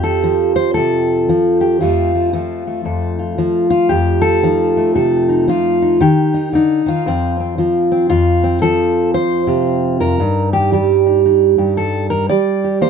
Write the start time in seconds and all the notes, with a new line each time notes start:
Already playing: F2 G4
0.04 A4
0.23 F3
0.56 C5
0.74 C3 A4
1.29 F3
1.61 G4
1.81 F2 F3 A3 F4
2.15 A3
2.33 F3 A3
2.67 A3
2.85 F2 A4
3.19 F4
3.38 F3
3.70 F4
3.89 F2 G4
4.22 A4
4.43 F3 D#4
4.77 A3
4.95 C3 A4
5.29 D#4
5.48 F3 F4
5.82 D#4
6.00 D#3 G4
6.34 D#4
6.53 D3 D#4
6.86 D#3 F4
7.06 F2 F3 C4
7.40 C4
7.58 F3 F4
7.92 C4
8.10 F2 F4
8.44 C4
8.62 F3 A4
9.14 C5
9.47 C3 F4
10.00 F2 A#4
10.20 G2 D#4
10.53 G4
10.72 G3 G4
11.06 D#4
11.26 D#4
11.58 G2 G4
11.77 A4
12.10 A#4
12.29 G3 D5
12.64 G4
12.81 A#3 C5